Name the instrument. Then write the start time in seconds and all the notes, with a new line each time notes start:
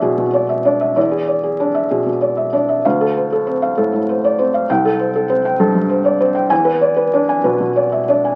felt piano
Already playing: E2 D4 G#4 D5 E5
0.02 B2 G#4
0.17 B2
0.33 D5
0.49 E5
0.65 D4 D5
0.81 E5
0.96 E2 D5
1.11 G#4
1.28 D5
1.44 G#4
1.60 D4 D5
1.74 E5
1.91 B2 G#4
2.06 B2
2.21 D5
2.37 E5
2.53 D4 D5
2.69 E5
2.85 D2 F5
3.01 A4
3.17 C5
3.32 A4
3.47 C4 C5
3.62 F5
3.77 A2 A4
3.93 A2
4.09 C5
4.24 D5
4.39 C4 C5
4.54 F5
4.70 C2 G5
4.85 A4
5.00 C5
5.15 A4
5.30 C4 C5
5.45 G5
5.59 G2 A4
5.75 G2
5.90 C5
6.05 D5
6.20 C4 C5
6.35 G5
6.50 E2 G#5
6.65 B4
6.81 D5
6.96 B4
7.13 D4 D5
7.29 G#5
7.44 B2 B4
7.60 B2
7.76 D5
7.92 E5
8.08 D4 D5
8.25 G#5